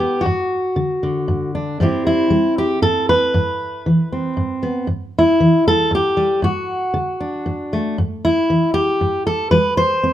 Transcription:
0.00 0.20 G2 medium
0.00 0.22 B3 soft
0.00 0.24 G4 medium
0.21 1.52 F#4 medium
0.26 0.72 G2 medium
0.76 1.02 D3 medium
1.03 1.80 D3 soft
1.28 1.74 G2 medium
1.55 1.77 D4 soft
1.80 2.26 G2 medium
1.80 2.29 G3 soft
1.80 3.32 C4 soft
1.80 2.07 E4 soft
1.80 2.06 G4 soft
2.07 2.58 E4 medium
2.30 2.77 G3 medium
2.58 2.82 G4 medium
2.82 3.29 G2 medium
2.82 3.08 A4 medium
3.09 4.64 B4 medium
3.34 3.81 G2 medium
3.86 4.33 E3 medium
4.12 4.87 C4 soft
4.37 4.84 G2 medium
4.63 4.86 B3 soft
4.87 5.35 G2 medium
5.18 5.67 E4 medium
5.40 5.87 E3 medium
5.68 5.93 A4 loud
5.91 6.39 G2 medium
5.91 6.44 G4 medium
6.17 6.44 G3 soft
6.42 6.90 G2 medium
6.42 7.99 F#4 medium
6.94 7.41 D3 medium
7.20 7.95 D4 soft
7.46 7.93 G2 medium
7.73 7.96 A3 soft
7.98 8.45 G2 medium
8.25 8.73 E4 medium
8.50 8.97 E3 medium
8.74 9.26 G4 medium
9.01 9.48 G2 medium
9.27 9.51 A4 medium
9.51 9.99 G3 medium
9.51 9.77 B4 loud
9.77 10.13 C5 medium
10.03 10.13 C4 medium

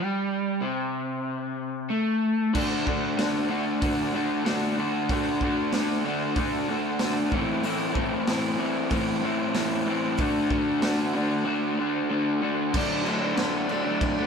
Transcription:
0.00 0.61 G3 loud
0.61 1.89 C3 medium
1.90 2.53 A3 medium
2.53 2.85 D3 medium
2.53 2.86 A3 medium
2.53 2.87 D4 loud
2.53 2.88 F#4 loud
2.53 kick loud
2.53 crash loud
2.86 3.17 D3 medium
2.86 3.18 A3 medium
2.86 3.19 D4 medium
2.86 3.20 F#4 medium
2.86 kick medium
3.17 3.48 D3 medium
3.17 3.49 A3 medium
3.17 3.49 D4 medium
3.17 3.50 F#4 loud
3.17 snare loud
3.17 open hi-hat medium
3.49 3.79 D3 medium
3.49 3.81 A3 medium
3.49 3.81 D4 medium
3.49 3.83 F#4 loud
3.81 4.12 D3 loud
3.81 4.14 A3 medium
3.81 4.14 D4 loud
3.81 4.15 F#4 loud
3.81 kick loud
3.81 open hi-hat medium
4.14 4.43 D3 medium
4.14 4.45 A3 medium
4.14 4.46 D4 medium
4.14 4.46 F#4 medium
4.44 4.76 D3 medium
4.44 4.78 A3 medium
4.44 4.78 D4 medium
4.44 4.79 F#4 medium
4.44 snare loud
4.44 open hi-hat medium
4.77 5.10 D3 medium
4.77 5.11 A3 medium
4.77 5.11 D4 medium
4.77 5.12 F#4 medium
5.09 5.41 D3 medium
5.09 5.43 A3 loud
5.09 5.43 D4 medium
5.09 kick loud
5.09 open hi-hat medium
5.13 5.44 F#4 loud
5.41 5.71 D3 medium
5.41 5.73 A3 medium
5.41 5.74 D4 loud
5.41 5.74 F#4 loud
5.41 kick medium
5.72 6.04 D3 medium
5.72 6.05 A3 medium
5.72 6.05 D4 medium
5.72 6.06 F#4 medium
5.72 snare loud
5.72 open hi-hat medium
6.05 6.35 D3 medium
6.05 6.37 A3 medium
6.05 6.37 D4 loud
6.05 6.38 F#4 medium
6.36 6.67 D3 medium
6.36 6.69 A3 loud
6.36 6.69 D4 loud
6.36 6.70 F#4 loud
6.36 kick loud
6.36 open hi-hat medium
6.68 6.99 D3 medium
6.68 7.01 A3 medium
6.68 7.01 D4 medium
6.68 7.02 F#4 medium
6.99 7.30 D3 medium
6.99 7.33 A3 medium
6.99 7.31 D4 loud
6.99 snare loud
6.99 open hi-hat medium
7.03 7.32 F#4 loud
7.31 7.61 A2 medium
7.31 7.62 E3 loud
7.31 7.64 A3 loud
7.31 7.64 C4 loud
7.31 7.65 E4 loud
7.31 kick loud
7.63 7.93 A2 medium
7.63 7.93 E3 medium
7.63 7.96 A3 medium
7.63 7.95 C4 loud
7.63 7.96 E4 medium
7.63 open hi-hat medium
7.94 8.25 A2 medium
7.94 8.27 E3 medium
7.94 8.28 A3 loud
7.94 8.28 C4 loud
7.94 8.28 E4 loud
7.94 kick medium
8.27 8.56 A2 medium
8.27 8.57 E3 medium
8.27 8.59 A3 medium
8.27 8.59 C4 medium
8.27 8.59 E4 loud
8.27 snare loud
8.27 open hi-hat medium
8.57 8.89 A2 medium
8.57 8.90 E3 medium
8.57 8.91 A3 medium
8.57 8.91 C4 medium
8.57 8.92 E4 medium
8.90 9.21 A2 loud
8.90 9.22 E3 loud
8.90 9.24 A3 loud
8.90 9.24 C4 loud
8.90 9.25 E4 loud
8.90 kick loud
8.90 open hi-hat medium
9.22 9.53 A2 medium
9.22 9.54 E3 medium
9.22 9.56 A3 medium
9.22 9.56 C4 medium
9.22 9.56 E4 loud
9.54 9.85 A2 loud
9.54 9.85 E3 loud
9.54 9.87 A3 medium
9.54 9.87 C4 medium
9.54 9.88 E4 loud
9.54 snare loud
9.54 open hi-hat medium
9.86 10.17 A2 medium
9.86 10.17 E3 medium
9.86 10.20 A3 medium
9.86 10.18 C4 medium
9.86 10.18 E4 loud
10.17 10.49 D3 loud
10.17 10.50 A3 loud
10.17 10.51 D4 loud
10.17 kick loud
10.17 open hi-hat medium
10.22 10.52 F#4 loud
10.50 10.81 D3 medium
10.50 10.82 A3 medium
10.50 10.83 D4 medium
10.50 10.84 F#4 loud
10.50 kick medium
10.82 11.12 D3 medium
10.82 11.14 A3 loud
10.82 11.14 D4 medium
10.82 11.15 F#4 loud
10.82 snare loud
10.82 open hi-hat medium
11.14 11.43 D3 medium
11.14 11.44 A3 medium
11.14 11.45 D4 loud
11.14 11.46 F#4 loud
11.44 11.78 D3 medium
11.44 11.79 A3 loud
11.44 11.79 D4 loud
11.44 11.80 F#4 loud
11.79 12.08 D3 medium
11.79 12.09 A3 medium
11.79 12.10 D4 loud
11.79 12.11 F#4 medium
12.10 12.40 D3 loud
12.10 12.41 A3 loud
12.10 12.42 D4 loud
12.10 12.43 F#4 loud
12.42 12.71 D3 medium
12.42 12.72 A3 medium
12.42 12.72 D4 medium
12.42 12.73 F#4 medium
12.73 13.04 D3 medium
12.73 13.05 F#3 medium
12.73 13.07 A3 loud
12.73 kick loud
12.73 crash loud
12.73 crash medium
12.77 13.08 D4 loud
13.04 13.35 D3 medium
13.04 13.25 F#3 medium
13.04 13.22 A3 medium
13.04 crash medium
13.09 13.20 D4 medium
13.21 13.38 A3 medium
13.21 13.40 D4 medium
13.25 13.37 F#3 medium
13.35 13.68 D3 medium
13.35 13.70 F#3 medium
13.35 13.71 A3 loud
13.35 snare loud
13.35 crash medium
13.41 13.73 D4 medium
13.69 14.16 D3 medium
13.69 13.88 F#3 medium
13.69 13.86 A3 medium
13.69 crash medium
13.73 13.84 D4 medium
13.84 14.18 A3 medium
13.84 14.16 D4 medium
13.89 14.20 F#3 medium
14.01 kick loud
14.01 crash medium
14.16 14.27 A3 medium
14.16 14.27 D4 medium
14.21 14.27 F#3 medium

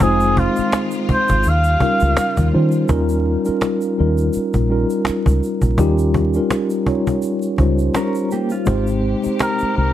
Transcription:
0.00 0.46 F1 loud
0.00 1.43 D#3 medium
0.00 1.43 G#3 medium
0.00 1.21 G#3 loud
0.00 1.21 C4 medium
0.00 1.21 D#4 medium
0.00 2.86 F4 medium
0.00 1.22 F4 medium
0.00 0.41 G#4 loud
0.00 1.22 C5 loud
0.00 cajon bass loud
0.20 shaker soft
0.37 0.84 F4 medium
0.37 cajon bass medium
0.56 muted fingered electric bass stroke soft
0.56 shaker soft
0.72 finger snap medium
0.72 cajon slap loud
0.72 shaker medium
0.91 shaker soft
1.09 1.51 C5 medium
1.09 muted fingered electric bass stroke soft
1.09 cajon bass loud
1.28 1.43 G#1 medium
1.28 cajon bass medium
1.28 shaker soft
1.43 1.75 D#2 loud
1.43 2.87 C#3 medium
1.43 2.87 G3 medium
1.43 cajon slap soft
1.43 shaker medium
1.49 2.55 F5 loud
1.64 shaker soft
1.80 2.42 G3 medium
1.80 2.42 C#4 medium
1.80 2.42 D#4 medium
1.80 2.42 F4 medium
1.80 2.43 A#4 medium
1.80 muted fingered electric bass stroke soft
1.80 cajon bass medium
2.00 2.15 C#2 loud
2.00 shaker medium
2.17 finger snap medium
2.17 cajon slap loud
2.17 shaker medium
2.37 2.51 D#2 medium
2.37 cajon bass medium
2.37 shaker soft
2.51 2.84 D#3 medium
2.51 2.83 G3 medium
2.51 2.84 C#4 medium
2.51 2.84 D#4 medium
2.51 2.84 F4 medium
2.51 2.84 C5 medium
2.51 cajon slap soft
2.72 shaker medium
2.89 3.35 D#2 medium
2.89 3.35 G3 loud
2.89 3.35 C#4 loud
2.89 3.35 D#4 medium
2.89 3.35 F4 medium
2.89 3.36 A#4 loud
2.89 cajon bass loud
2.89 shaker medium
3.09 shaker soft
3.26 cajon slap soft
3.44 3.89 G3 medium
3.44 3.89 C#4 medium
3.44 3.89 D#4 medium
3.44 3.90 F4 medium
3.44 3.90 A#4 medium
3.44 shaker medium
3.48 muted fingered electric bass stroke soft
3.61 finger snap medium
3.61 cajon slap loud
3.61 shaker medium
3.81 shaker soft
3.97 4.28 D#2 medium
3.97 4.59 G3 medium
3.97 4.59 C#4 medium
3.97 4.59 D#4 medium
3.97 4.59 F4 medium
3.97 4.60 A#4 medium
3.97 cajon slap soft
4.18 shaker soft
4.33 muted fingered electric bass stroke soft
4.33 cajon slap soft
4.33 shaker medium
4.54 4.84 A#1 medium
4.54 cajon bass medium
4.54 shaker soft
4.68 5.61 G3 medium
4.68 5.62 C#4 medium
4.68 5.62 D#4 medium
4.68 5.62 F4 medium
4.68 5.62 A#4 medium
4.68 cajon slap soft
4.90 shaker soft
5.05 finger snap medium
5.05 cajon slap loud
5.05 shaker medium
5.09 muted fingered electric bass stroke soft
5.26 5.40 C#2 medium
5.26 cajon bass medium
5.26 shaker soft
5.40 cajon slap soft
5.40 shaker soft
5.61 5.76 A#1 medium
5.61 cajon bass medium
5.61 shaker soft
5.78 6.37 D#2 loud
5.78 6.24 G3 loud
5.78 6.24 C#4 medium
5.78 6.24 D#4 medium
5.78 6.24 F4 medium
5.78 6.25 G4 loud
5.78 cajon bass loud
5.78 shaker medium
5.98 shaker soft
6.14 cajon bass medium
6.34 6.78 G3 medium
6.34 6.79 C#4 medium
6.34 6.79 D#4 medium
6.34 6.79 F4 medium
6.34 6.79 A#4 medium
6.34 shaker soft
6.51 finger snap medium
6.51 cajon slap loud
6.51 shaker medium
6.70 shaker soft
6.86 7.48 G3 medium
6.86 7.48 C#4 medium
6.86 7.48 D#4 medium
6.86 7.48 F4 medium
6.86 7.49 C#5 medium
6.86 cajon bass medium
7.07 cajon bass medium
7.07 shaker soft
7.22 cajon slap soft
7.22 shaker medium
7.42 shaker soft
7.58 7.88 C#2 medium
7.58 8.50 G3 medium
7.58 8.50 C#4 medium
7.58 8.51 D#4 medium
7.58 8.51 F4 medium
7.58 8.51 C5 medium
7.58 cajon bass medium
7.79 shaker soft
7.95 8.30 C#4 medium
7.95 8.30 A#4 medium
7.95 finger snap medium
7.95 cajon slap loud
7.95 shaker medium
8.15 shaker soft
8.29 8.51 G4 medium
8.29 cajon slap soft
8.29 shaker soft
8.33 8.51 A#3 medium
8.50 8.86 F4 medium
8.50 shaker medium
8.65 9.13 G#1 loud
8.65 9.93 C3 medium
8.65 9.12 G#3 loud
8.65 9.93 G#3 medium
8.65 9.12 C4 medium
8.65 9.13 D#4 medium
8.65 9.93 G4 medium
8.65 9.13 G4 medium
8.65 9.13 C5 loud
8.65 cajon bass loud
8.65 shaker medium
8.87 shaker soft
9.04 cajon slap soft
9.22 9.93 G#3 medium
9.22 9.93 C4 medium
9.22 9.93 D#4 medium
9.22 9.93 G4 medium
9.22 9.93 C5 medium
9.22 muted fingered electric bass stroke soft
9.22 shaker soft
9.39 9.75 A#4 medium
9.39 finger snap medium
9.39 cajon slap loud
9.39 shaker medium
9.59 muted fingered electric bass stroke soft
9.59 shaker soft
9.77 9.93 C2 medium
9.77 9.93 A#4 medium
9.77 cajon slap soft

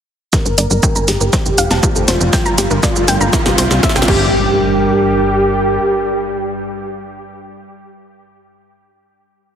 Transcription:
0.33 4.07 G2 medium
0.33 1.32 G3 medium
0.33 4.07 G3 medium
0.33 1.32 D4 medium
0.33 0.39 G4 medium
0.33 1.32 A#4 medium
0.33 1.09 A#4 loud
0.33 kick loud
0.33 snare soft
0.33 riser medium
0.33 shaker medium
0.46 0.55 G1 medium
0.46 0.55 A#4 medium
0.46 shaker soft
0.58 0.68 G1 loud
0.58 0.68 D5 medium
0.58 open hi-hat loud
0.58 shaker medium
0.71 0.80 G1 medium
0.71 shaker soft
0.83 0.93 G5 loud
0.83 kick loud
0.83 shaker medium
0.95 1.05 G1 medium
0.95 1.05 A#5 medium
0.95 shaker soft
1.08 1.18 G1 medium
1.08 2.10 G4 loud
1.08 1.14 G4 medium
1.08 snare medium
1.08 open hi-hat loud
1.08 shaker medium
1.21 1.30 G1 medium
1.21 1.30 A#4 medium
1.21 shaker soft
1.33 2.32 A3 medium
1.33 2.32 F4 medium
1.33 2.32 C5 medium
1.33 1.43 C5 medium
1.33 kick loud
1.33 snare medium
1.33 shaker medium
1.46 1.55 F1 medium
1.46 shaker soft
1.58 1.68 F1 loud
1.58 1.68 F5 loud
1.58 open hi-hat loud
1.58 shaker medium
1.71 1.80 F1 medium
1.71 1.80 A5 medium
1.71 snare medium
1.71 shaker soft
1.83 1.89 F4 medium
1.83 kick loud
1.83 shaker medium
1.95 2.05 F1 medium
1.95 2.05 A4 medium
1.95 shaker soft
2.08 2.18 F1 loud
2.08 4.08 F4 loud
2.08 2.18 C5 medium
2.08 snare medium
2.08 open hi-hat loud
2.08 shaker medium
2.21 2.30 F1 medium
2.21 shaker soft
2.33 4.06 G3 medium
2.33 3.32 D4 medium
2.33 3.32 A#4 medium
2.33 2.43 G5 medium
2.33 kick loud
2.33 snare medium
2.33 shaker medium
2.46 2.55 G1 medium
2.46 2.55 A#5 medium
2.46 shaker soft
2.58 2.68 G1 loud
2.58 2.64 G4 medium
2.58 snare medium
2.58 open hi-hat loud
2.58 shaker medium
2.71 2.80 G1 medium
2.71 2.80 A#4 medium
2.71 shaker soft
2.83 2.93 D5 medium
2.83 kick loud
2.83 snare medium
2.83 shaker medium
2.96 3.05 G1 medium
2.96 shaker soft
3.08 3.18 G1 medium
3.08 3.18 G5 loud
3.08 snare medium
3.08 open hi-hat loud
3.08 shaker medium
3.21 3.30 G1 medium
3.21 3.30 A#5 medium
3.21 shaker soft
3.33 3.39 E4 medium
3.33 4.07 C5 medium
3.33 4.07 E5 medium
3.33 kick loud
3.33 snare medium
3.33 shaker medium
3.46 3.55 C2 medium
3.46 3.55 G4 medium
3.46 snare medium
3.46 shaker soft
3.58 3.68 C2 loud
3.58 3.68 C5 medium
3.58 snare loud
3.58 open hi-hat loud
3.58 shaker medium
3.71 3.80 C2 medium
3.71 snare medium
3.71 shaker soft
3.83 3.93 E5 loud
3.83 kick loud
3.83 snare loud
3.83 shaker medium
3.89 snare medium
3.96 4.05 C2 medium
3.96 4.05 G5 medium
3.96 snare medium
3.96 shaker soft
4.02 snare medium
4.08 5.79 G1 loud
4.08 7.04 G2 medium
4.08 7.04 G3 medium
4.08 7.04 D4 medium
4.08 7.04 G4 loud
4.08 4.55 G4 loud
4.08 7.04 A#4 loud
4.08 kick loud
4.08 crash medium
4.08 impact medium

